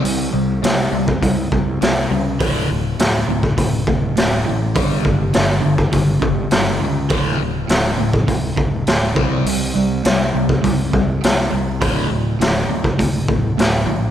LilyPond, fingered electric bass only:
\new Staff \with { instrumentName = "Fingered electric bass" } { \clef bass \time 4/4 \key c \mixolydian \tempo 4 = 102 c,8 c,8 c,8 c,8 c,8 c,8 c,8 cis,8 | d,,8 d,,8 d,,8 d,,8 d,,8 d,,8 d,,8 a,,8 | g,,8 g,,8 g,,8 g,,8 g,,8 g,,8 g,,8 cis,8 | d,,8 d,,8 d,,8 d,,8 d,,8 d,,8 d,,8 c,8 |
c,8 c,8 c,8 c,8 c,8 c,8 c,8 c,8 | d,,8 d,,8 d,,8 d,,8 d,,8 d,,8 d,,8 bes,,8 | }